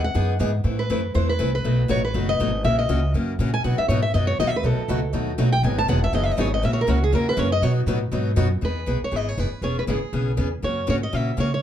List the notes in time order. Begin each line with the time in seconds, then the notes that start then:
Already playing: D#2
0.04 F#5
0.14 F#2 E3 G#3 B3 D#4 G#4
0.39 G#2 E3 G#3 B3 D#4 G#4
0.64 A2 E3 A3 C4 E4 B4
0.79 B4
0.90 F#2 E3 A3 C4 E4 B4
1.14 E2 E3 A3 C4 E4 B4 C5
1.29 B4
1.39 C2 E3 A3 C4 E4 B4
1.55 B4
1.64 B1 B2 F#3 A3 D#4 F#4
1.88 A1 B2 F#3 A3 D#4 F#4 C#5
2.05 B4
2.14 F#1 B2 F#3 A3 D#4 F#4
2.29 D#5
2.39 G#1 B2 F#3 A3 D#4 F#4
2.64 A#1 C#3 E3 A#3 C#4 F#4 E5
2.79 D#5
2.89 C#2 C#3 E3 A#3 C#4 F#4
3.14 F#2 C#3 E3 A#3 C#4 F#4
3.39 A#2 C#3 E3 A#3 C#4 F#4
3.54 G#5
3.64 B2 F#3 B3 D#4 F#4 F#5
3.78 E5, muted upright bass stroke
3.88 G#2 B2 F#3 B3 D#4 F#4 C#5
4.02 E5
4.14 F#2 B2 F#3 B3 D#4 F#4 D#5
4.27 C#5
4.39 D#2 B2 F#3 B3 D#4 F#4 D#5
4.47 E5
4.56 B4
4.63 B1 B2 F#3 A3 D#4 F#4 A4 B4
4.78 muted upright bass stroke
4.88 C#2 B2 F#3 A3 D#4 F#4 B4
5.13 D#2 B2 F#3 A3 D#4 F#4 B4
5.38 B1 B2 F#3 A3 D#4 F#4 B4
5.52 G5
5.63 G#1 D#3 F#3 B3 D#4 G#4 G#5
5.78 A5
5.88 E1 D#3 F#3 B3 D#4 G#4 F#5
6.04 E5
6.12 F#1 D#3 F#3 B3 D#4 G#4 D#5
6.23 E5
6.31 D#5
6.38 G#1 D#3 F#3 B3 D#4 G#4 C#5
6.54 D#5
6.62 A#1 C#3 E3 F#3 A#3 C#4 E4 F#4 A#4 E5
6.73 C#5
6.81 A#4
6.87 C#2 C#3 E3 F#3 A#3 C#4 E4 F#4 A#4
7.04 G#4
7.12 E2 C#3 E3 F#3 A#3 C#4 E4 F#4 A#4
7.29 B4
7.37 F#2 C#3 E3 F#3 A#3 C#4 E4 F#4 A#4 C#5
7.52 D#5
7.61 B2 D#3 F#3 B3 D#4 F#4 B4 C#5
7.86 A2 B2 D#3 F#3 B3 D#4 F#4 B4
8.12 G#2 B2 D#3 F#3 B3 D#4 F#4 B4
8.36 F#2 B2 D#3 F#3 B3 D#4 F#4 B4
8.61 E2 E3 B3 D#4 G#4 B4
8.86 B1 E3 B3 D#4 G#4
9.01 C#5, muted upright bass stroke
9.11 G#1 E3 B3 D#4 G#4
9.16 D#5
9.29 C#5
9.37 F#1 E3 B3 D#4 G#4 B4
9.51 muted upright bass stroke
9.62 E1 C#3 E3 B3 C#4 G#4 C#5
9.79 B4
9.87 G#1 C#3 E3 B3 C#4 G#4
10.01 muted upright bass stroke
10.13 B1 C#3 E3 B3 C#4 G#4
10.37 E2 C#3 E3 B3 C#4 G#4
10.62 F#2 C#3 E3 A#3 C#4 F#4 C#5
10.87 G#2 C#3 E3 A#3 C#4 F#4 C#5
11.03 D#5
11.13 A#2 C#3 E3 A#3 C#4 F#4 E5
11.37 C#3 E3 A#3 C#4 F#4 C#5
11.54 C#5